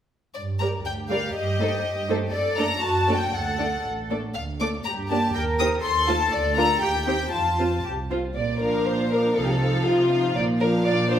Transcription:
0.35 0.77 G2 soft
0.35 0.43 D5 soft
0.60 0.69 G3 soft
0.60 0.68 G4 soft
0.60 0.69 A#4 soft
0.60 0.69 D5 soft
0.60 0.68 A#5 soft
0.85 1.27 D2 soft
0.85 2.29 G4 soft
0.85 0.94 G5 soft
1.10 1.18 G3 soft
1.10 1.18 G4 soft
1.10 1.19 A#4 soft
1.10 1.19 D5 soft
1.10 1.35 F5 soft
1.35 1.76 G2 soft
1.35 2.07 D#5 soft
1.60 1.67 A3 soft
1.60 1.68 D#4 soft
1.60 1.68 A4 soft
1.60 1.68 C5 soft
1.85 2.25 G2 soft
2.09 2.17 A3 soft
2.09 2.17 D#4 soft
2.09 2.17 A4 soft
2.09 2.17 C5 soft
2.33 2.74 F#2 soft
2.33 2.82 A4 medium
2.33 2.56 D5 medium
2.57 2.66 A3 soft
2.57 2.66 D4 soft
2.57 2.65 A4 soft
2.57 2.66 D5 soft
2.57 2.83 A#5 medium
2.82 3.25 F#2 soft
2.82 3.32 F#4 soft
2.82 3.16 A5 medium
3.08 3.16 A3 soft
3.08 3.17 D4 soft
3.08 3.16 A4 soft
3.08 3.16 D5 soft
3.16 3.33 G5 soft
3.33 3.76 D2 soft
3.33 4.08 A4 soft
3.33 3.84 F#5 soft
3.59 3.68 A3 soft
3.59 3.68 D4 soft
3.59 3.67 A4 soft
3.59 3.67 D5 soft
3.84 4.26 A1 soft
4.10 4.19 A3 soft
4.10 4.19 D4 soft
4.10 4.18 A4 soft
4.10 4.18 D5 soft
4.35 4.77 D2 soft
4.35 4.43 F5 soft
4.60 4.68 A3 soft
4.60 4.68 D4 soft
4.60 4.69 A4 soft
4.60 4.69 D5 soft
4.60 4.68 D6 soft
4.85 5.26 G2 soft
4.85 5.31 G4 soft
4.85 4.93 A#5 soft
5.10 5.18 A#3 soft
5.10 5.18 D4 soft
5.10 5.18 G4 soft
5.10 5.18 D5 soft
5.10 5.34 A5 soft
5.34 5.76 D#2 soft
5.34 5.84 A#4 soft
5.34 5.42 G5 medium
5.59 5.67 A#3 soft
5.59 5.67 D#4 soft
5.59 5.67 G4 soft
5.59 5.67 C5 soft
5.59 5.68 D#6 medium
5.83 6.25 D#2 soft
5.83 6.80 A4 medium
5.83 6.08 C6 medium
6.08 6.16 A3 soft
6.08 6.16 F4 soft
6.08 6.16 C5 soft
6.08 6.33 A5 medium
6.33 6.74 D2 medium
6.33 6.57 D5 medium
6.57 6.65 D4 soft
6.57 6.65 F4 soft
6.57 6.66 F4 soft
6.57 6.66 A#4 soft
6.57 6.82 A#5 medium
6.82 7.24 D#2 medium
6.82 7.33 G4 medium
6.82 7.05 G5 medium
7.06 7.16 C4 soft
7.06 7.16 D#4 soft
7.06 7.15 G4 soft
7.06 7.15 C5 soft
7.06 7.32 G5 medium
7.32 7.77 F2 soft
7.32 7.79 F4 soft
7.32 7.84 A5 soft
7.59 7.67 C4 soft
7.59 7.67 F4 soft
7.59 7.68 F4 soft
7.59 7.67 C5 soft
7.84 8.28 C2 soft
7.84 7.92 G4 soft
8.10 8.19 C4 soft
8.10 8.18 F4 soft
8.10 8.19 F4 soft
8.10 8.18 C5 soft
8.35 8.78 A#1 soft
8.35 8.80 A#2 soft
8.35 8.59 D5 soft
8.61 9.11 F3 soft
8.61 9.11 D4 soft
8.61 8.86 A#4 soft
8.61 9.10 F5 soft
8.86 9.31 A#2 soft
8.86 9.11 C5 medium
9.11 9.36 F3 soft
9.11 9.36 D4 soft
9.11 9.37 A#4 soft
9.11 9.35 F5 soft
9.36 9.78 C2 soft
9.36 9.81 C3 soft
9.36 9.61 F3 soft
9.36 9.61 D#4 soft
9.36 9.44 A4 soft
9.36 9.60 F5 soft
9.44 9.51 G4 soft
9.50 9.86 A4 soft
9.61 10.10 F3 soft
9.61 10.10 D#4 soft
9.61 10.10 F5 soft
9.85 10.30 C3 soft
9.85 10.35 F4 medium
10.11 10.36 F3 soft
10.11 10.36 D#4 soft
10.11 10.35 F5 soft
10.36 10.78 A#1 soft
10.36 10.80 A#2 soft
10.36 10.44 D5 medium
10.60 11.09 F3 soft
10.60 11.09 D4 soft
10.60 10.68 A#4 medium
10.60 11.09 F5 soft
10.85 11.19 A#2 medium
10.85 11.09 D5 medium
11.10 11.19 F3 soft
11.10 11.19 D4 soft
11.10 11.18 C5 medium
11.10 11.19 F5 soft

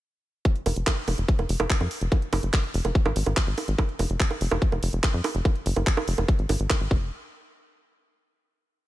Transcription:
0.45 kick loud
0.45 closed hi-hat medium
0.56 closed hi-hat soft
0.66 0.73 F1 loud
0.66 open hi-hat loud
0.66 high bongo soft
0.76 0.84 F1 medium
0.76 closed hi-hat medium
0.87 kick loud
0.87 clap loud
0.87 high bongo medium
0.97 closed hi-hat soft
1.08 1.15 F1 loud
1.08 open hi-hat medium
1.08 high bongo soft
1.18 1.25 F1 medium
1.18 closed hi-hat medium
1.28 kick loud
1.28 closed hi-hat medium
1.39 1.46 F1 medium
1.39 closed hi-hat soft
1.39 high bongo soft
1.49 1.57 F1 loud
1.49 open hi-hat loud
1.60 1.67 F1 medium
1.60 closed hi-hat medium
1.60 high bongo medium
1.70 kick loud
1.70 clap loud
1.70 closed hi-hat medium
1.81 1.88 F2 medium
1.81 closed hi-hat soft
1.81 high bongo soft
1.91 open hi-hat medium
2.01 2.09 F1 medium
2.01 closed hi-hat medium
2.12 kick loud
2.12 closed hi-hat medium
2.12 high bongo soft
2.22 closed hi-hat soft
2.33 2.40 F#1 loud
2.33 open hi-hat loud
2.33 high bongo medium
2.43 2.50 F#1 medium
2.43 closed hi-hat medium
2.53 kick loud
2.53 clap loud
2.53 closed hi-hat medium
2.53 high bongo soft
2.64 closed hi-hat soft
2.74 2.82 F1 medium
2.74 open hi-hat medium
2.85 2.92 F1 medium
2.85 closed hi-hat medium
2.85 high bongo soft
2.95 kick loud
2.95 closed hi-hat medium
3.06 3.13 G#1 medium
3.06 closed hi-hat soft
3.06 high bongo medium
3.16 3.23 G#1 loud
3.16 open hi-hat loud
3.26 3.34 G#1 medium
3.26 closed hi-hat medium
3.26 high bongo soft
3.37 kick loud
3.37 clap loud
3.47 3.55 G#1 medium
3.47 closed hi-hat soft
3.58 open hi-hat medium
3.58 high bongo soft
3.68 3.75 G#1 medium
3.68 closed hi-hat medium
3.78 kick loud
3.78 closed hi-hat medium
3.78 high bongo medium
3.89 closed hi-hat soft
3.99 4.07 F1 loud
3.99 open hi-hat loud
3.99 high bongo soft
4.10 4.17 F1 medium
4.10 closed hi-hat medium
4.20 kick loud
4.20 clap loud
4.20 closed hi-hat medium
4.31 closed hi-hat soft
4.31 high bongo soft
4.41 4.48 F1 loud
4.41 open hi-hat loud
4.51 4.59 F1 medium
4.51 closed hi-hat soft
4.51 high bongo medium
4.62 kick loud
4.62 closed hi-hat medium
4.72 4.80 F1 medium
4.72 closed hi-hat soft
4.72 high bongo soft
4.83 4.90 F1 loud
4.83 open hi-hat loud
4.93 5.00 F1 medium
4.93 closed hi-hat medium
5.03 kick loud
5.03 clap loud
5.03 high bongo soft
5.14 5.21 F2 medium
5.14 closed hi-hat soft
5.24 open hi-hat loud
5.24 high bongo medium
5.35 5.42 F1 medium
5.35 closed hi-hat medium
5.45 kick loud
5.45 closed hi-hat medium
5.45 high bongo soft
5.56 closed hi-hat soft
5.66 5.73 F#1 loud
5.66 open hi-hat loud
5.76 5.84 F#1 medium
5.76 closed hi-hat medium
5.76 high bongo soft
5.87 kick loud
5.87 clap loud
5.87 closed hi-hat medium
5.97 closed hi-hat soft
5.97 high bongo medium
6.08 6.15 F1 loud
6.08 open hi-hat loud
6.18 6.25 F1 medium
6.18 closed hi-hat soft
6.18 high bongo soft
6.28 kick loud
6.28 closed hi-hat medium
6.39 6.46 G#1 medium
6.39 closed hi-hat soft
6.49 6.57 G#1 loud
6.49 open hi-hat loud
6.49 high bongo soft
6.60 6.67 G#1 medium
6.60 closed hi-hat medium
6.70 kick loud
6.70 clap loud
6.70 high bongo medium
6.81 6.88 G#1 medium
6.81 closed hi-hat soft
6.91 7.10 F1 loud
6.91 kick loud

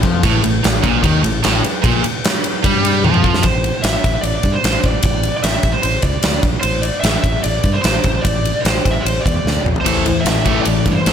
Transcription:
0.03 0.23 F2 loud
0.03 0.24 F3 loud
0.03 kick loud
0.03 ride medium
0.23 0.42 A1 loud
0.23 0.43 A2 loud
0.23 kick loud
0.23 ride loud
0.44 0.63 A1 medium
0.44 0.60 A2 medium
0.44 ride medium
0.64 0.83 A1 medium
0.64 0.80 A2 medium
0.64 snare loud
0.64 ride medium
0.83 1.03 A#1 medium
0.83 1.03 A#2 loud
0.83 kick loud
0.83 ride medium
1.04 1.22 D#2 medium
1.04 1.23 D#3 loud
1.04 kick loud
1.04 ride loud
1.24 1.42 A1 medium
1.24 1.40 A2 medium
1.24 ride medium
1.44 1.63 A1 loud
1.44 1.63 A2 loud
1.44 snare loud
1.44 ride loud
1.62 muted distorted electric guitar stroke medium
1.62 muted overdriven electric guitar stroke medium
1.62 muted fingered electric bass stroke soft
1.62 ride medium
1.84 2.02 A#1 loud
1.84 2.04 A#2 loud
1.84 kick loud
1.84 ride loud
2.04 ride medium
2.24 snare loud
2.24 ride loud
2.44 ride medium
2.64 3.01 G2 medium
2.64 3.04 G3 loud
2.64 kick loud
2.64 ride loud
2.85 ride medium
3.04 3.41 F2 medium
3.04 3.43 F3 loud
3.04 high tom medium
3.14 mid tom medium
3.24 kick medium
3.34 snare medium
3.43 3.69 A1 medium
3.43 3.85 C5 medium
3.43 kick loud
3.43 ride loud
3.64 ride medium
3.82 3.96 A1 medium
3.82 4.21 E5 medium
3.82 snare loud
3.82 ride loud
4.04 4.17 A1 medium
4.04 kick medium
4.04 ride medium
4.22 4.36 A1 medium
4.22 4.54 D5 medium
4.22 ride medium
4.43 4.57 G2 medium
4.43 kick medium
4.43 ride medium
4.54 4.64 C5 medium
4.64 4.77 A1 medium
4.64 4.85 C5 medium
4.64 snare loud
4.64 ride medium
4.83 4.97 A1 medium
4.83 5.36 D5 medium
4.83 kick medium
4.83 ride medium
5.03 5.29 A1 loud
5.03 kick loud
5.03 ride loud
5.23 ride medium
5.37 5.43 D5 medium
5.44 5.57 A1 medium
5.44 5.72 E5 medium
5.44 snare loud
5.44 ride medium
5.63 5.76 A1 medium
5.63 kick medium
5.63 ride medium
5.72 5.82 C5 medium
5.83 5.97 A1 medium
5.83 6.04 C5 medium
5.83 ride medium
6.02 6.16 C#2 medium
6.02 6.40 D5 medium
6.02 kick medium
6.02 ride medium
6.23 6.37 D2 medium
6.23 snare loud
6.23 ride loud
6.43 6.56 A#1 loud
6.43 kick medium
6.43 ride medium
6.61 6.90 A1 loud
6.61 6.83 C5 medium
6.61 ride loud
6.82 7.00 D5 medium
6.82 ride medium
7.01 7.16 A1 medium
7.01 7.43 E5 medium
7.01 ride medium
7.05 snare loud
7.24 7.37 A1 medium
7.24 kick medium
7.24 ride medium
7.43 7.57 A1 medium
7.43 7.75 D5 medium
7.43 ride medium
7.63 7.77 G2 medium
7.63 kick medium
7.63 ride medium
7.73 7.81 C5 medium
7.82 7.97 A1 medium
7.82 8.25 C5 medium
7.82 snare loud
7.82 ride medium
8.04 8.17 A1 medium
8.04 kick medium
8.04 ride medium
8.22 8.51 A1 medium
8.22 8.65 D5 medium
8.22 kick loud
8.22 ride medium
8.45 ride medium
8.61 8.78 A1 medium
8.61 8.94 C5 medium
8.65 snare loud
8.65 ride medium
8.85 8.98 A1 medium
8.85 kick medium
8.85 ride medium
8.91 9.03 E5 loud
9.00 9.24 C5 medium
9.05 9.18 A1 medium
9.05 ride medium
9.21 9.60 D5 medium
9.26 9.39 E2 medium
9.26 kick medium
9.26 ride medium
9.45 9.58 D2 medium
9.45 snare medium
9.64 9.77 A#1 medium
9.64 mid tom medium
9.76 floor tom medium
9.81 10.10 A1 loud
9.81 10.25 C5 medium
9.86 10.04 A2 medium
9.86 10.05 E3 medium
9.86 10.05 A3 medium
9.86 ride loud
10.05 10.24 A2 medium
10.05 10.24 E3 medium
10.05 ride medium
10.20 10.60 E5 medium
10.25 10.38 A1 medium
10.25 10.44 A2 medium
10.25 10.44 E3 medium
10.25 snare loud
10.25 ride loud
10.45 10.58 A1 medium
10.45 10.65 A2 medium
10.45 10.65 E3 medium
10.45 10.65 A3 loud
10.45 kick medium
10.45 ride medium
10.61 10.94 D5 medium
10.65 10.79 A1 medium
10.65 10.84 A2 medium
10.65 10.84 E3 medium
10.65 ride loud
10.86 10.99 G2 medium
10.86 11.05 A2 medium
10.86 11.05 E3 medium
10.86 kick medium
10.86 ride medium
10.92 11.01 C5 medium
11.02 11.13 C5 medium
11.06 11.13 A1 medium
11.06 11.13 A2 medium
11.06 11.13 E3 loud
11.06 11.13 A3 loud
11.06 snare loud
11.06 ride medium

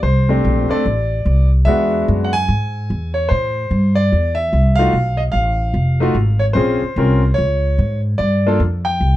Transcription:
0.03 0.43 C2 medium
0.03 0.72 C5 medium
0.29 0.68 A3 medium
0.29 0.68 C4 medium
0.29 0.68 D4 medium
0.29 0.68 G4 medium
0.44 0.69 A#1 medium
0.69 0.83 A3 medium
0.69 0.83 C4 medium
0.69 0.84 D4 medium
0.69 0.84 A4 medium
0.69 1.48 D5 medium
0.69 muted upright bass stroke soft
0.86 1.25 A1 medium
1.25 1.65 C2 medium
1.65 2.06 E2 medium
1.65 2.29 G#3 medium
1.65 2.29 B3 medium
1.65 2.29 D4 medium
1.65 2.30 F#4 medium
1.65 2.04 E5 medium
2.08 2.48 F#2 medium
2.25 2.34 F#5 medium
2.33 3.11 G#5 loud
2.48 2.88 G#2 medium
2.90 3.29 E2 medium
3.14 3.30 C#5 medium
3.29 3.70 A2 medium
3.29 3.99 C5 medium
3.71 4.10 G2 medium
3.95 4.34 D5 medium
4.12 4.52 E2 medium
4.35 4.74 E5 medium
4.53 4.92 C2 medium
4.75 4.92 A3 medium
4.75 4.92 D#4 medium
4.75 4.92 F4 medium
4.75 5.19 F5 loud
4.80 4.93 F#4 medium
4.93 5.33 B1 medium
5.17 5.22 D#5 medium
5.32 5.73 A1 medium
5.32 6.37 F5 medium
5.74 6.14 F1 medium
6.00 6.14 A3 medium
6.00 6.14 D#4 medium
6.00 6.14 F4 medium
6.00 6.15 F#4 medium
6.15 6.54 G#1 medium
6.39 6.44 C#5 medium
6.53 6.80 A#1 medium
6.53 6.79 C4 medium
6.53 6.79 C#4 medium
6.53 6.80 F4 medium
6.53 6.80 G#4 medium
6.53 7.32 C5 medium
6.82 muted upright bass stroke soft
6.96 7.36 C2 medium
6.96 7.21 C4 medium
6.96 7.21 C#4 medium
6.96 7.21 F4 medium
6.96 7.21 A#4 medium
7.34 7.99 C#5 medium
7.38 7.77 C#2 medium
7.79 8.18 G#2 medium
8.18 8.59 G2 medium
8.18 8.56 D5 medium
8.47 8.59 A#3 medium
8.47 8.59 D4 medium
8.47 8.59 F4 medium
8.47 8.60 A4 medium
8.60 8.99 F2 medium
8.85 9.17 G5 medium
9.01 9.17 C2 medium

